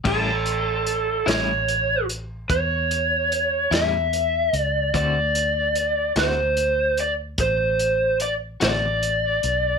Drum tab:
CC |x-----------|------------|
HH |-xxxxxxxxxxx|xxxxxxxxxxxx|
SD |---o-----o--|---o-----o--|
BD |o-----o-----|o-----o-----|